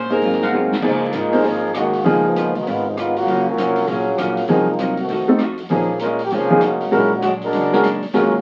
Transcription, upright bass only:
0.00 0.20 A#1 medium
0.22 0.80 G#1 medium
0.82 1.11 C#2 medium
1.13 1.42 G#2 medium
1.44 2.02 G#1 medium
2.05 2.51 C#2 medium
2.55 2.65 D2 medium
2.67 3.24 G#1 medium
3.26 3.55 F#1 medium
3.57 3.86 F1 medium
3.87 4.16 A#1 medium
4.18 4.47 A#1 medium
4.48 5.06 C2 medium
5.10 5.68 F2 medium
5.71 6.28 A#1 medium
6.32 6.90 F1 medium
6.93 7.50 A#1 medium
7.53 7.99 F#1 medium
8.02 muted upright bass stroke soft
8.13 8.41 D#2 medium

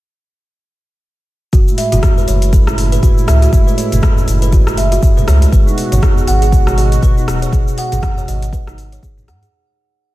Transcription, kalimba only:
1.53 1.66 F#4 medium
1.78 1.91 E5 loud
1.92 2.02 F#4 loud
2.18 2.27 B4 medium
2.28 2.41 C#5 medium
2.53 2.66 A4 medium
2.67 2.77 C#4 medium
2.92 2.98 B4 medium
3.03 3.16 F#4 medium
3.28 3.41 E5 loud
3.42 3.52 F#4 loud
3.67 3.77 B4 medium
3.78 3.91 C#5 medium
4.03 4.16 A4 medium
4.17 4.27 C#4 medium
4.42 4.48 B4 medium
4.53 4.66 F#4 medium
4.78 4.91 E5 loud
4.92 5.02 F#4 loud
5.17 5.27 B4 medium
5.28 5.41 C#5 medium
5.52 5.66 B4 medium
5.67 5.77 D#4 medium
5.92 5.98 C#5 medium
6.03 6.16 G#4 medium
6.28 6.41 F#5 loud
6.42 6.52 G#4 loud
6.67 6.77 C#5 medium
6.78 6.91 D#5 medium
7.03 7.17 B4 medium
7.17 7.27 D#4 medium
7.42 7.48 C#5 medium
7.53 7.66 G#4 medium
7.78 7.91 F#5 loud
7.93 8.02 G#4 loud
8.18 8.28 C#5 medium
8.28 8.41 D#5 medium
8.53 8.67 B4 medium
8.68 8.77 D#4 medium
8.93 8.98 C#5 medium
9.03 9.16 G#4 medium
9.28 9.41 F#5 loud
9.43 9.52 G#4 loud

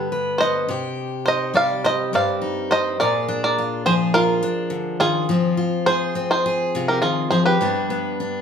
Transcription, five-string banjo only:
0.38 1.21 C5 medium
0.38 1.27 D#5 medium
1.26 1.52 C5 medium
1.26 1.56 D#5 medium
1.56 1.82 D5 medium
1.56 1.85 F5 medium
1.84 2.11 C5 medium
1.84 2.14 D#5 medium
2.15 2.67 D5 medium
2.15 2.72 F5 medium
2.71 2.97 C5 medium
2.71 2.98 D#5 medium
3.00 3.40 A#4 medium
3.00 3.43 D5 medium
3.44 3.82 A#4 medium
3.44 3.82 D5 medium
3.86 3.93 G#4 medium
3.86 3.93 C5 medium
4.14 4.96 F4 medium
4.14 4.96 A#4 medium
5.00 5.82 F4 medium
5.00 5.85 G#4 medium
5.86 6.28 G#4 medium
5.86 6.30 C5 medium
6.31 6.85 G#4 medium
6.31 6.84 C5 medium
6.88 7.01 G4 soft
6.88 7.02 A#4 medium
7.02 7.29 F4 medium
7.02 7.28 G#4 medium
7.31 7.45 G#4 medium
7.31 7.45 C5 medium
7.46 8.41 G4 medium
7.46 8.41 B4 medium

